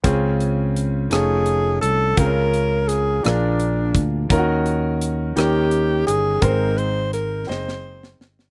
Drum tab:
HH |x-x-x-x-x-x-|x-x-x-x-x-x-|x-x-x-x-x-x-|x-x-x-------|
SD |------r-----|----r-r-----|------r-----|----r-oo-ooo|
BD |o-----------|o---------o-|o-----------|o-----------|